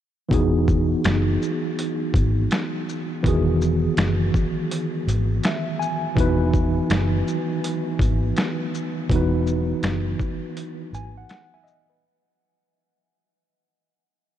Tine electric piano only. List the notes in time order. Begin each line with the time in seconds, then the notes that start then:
0.29 E3 B3 D#4 F#4
0.34 G#4
3.23 D#3 E3 B3 F#4
3.28 G#4
5.46 E5
5.79 G#5
6.15 E3 B3 D#4 F#4
6.20 B4
9.11 E3 B3 D#4 F#4
9.16 B4
10.95 G#5
11.17 F#5
11.30 F#5
11.54 E5 G#5
11.63 D#5 E5
11.89 B4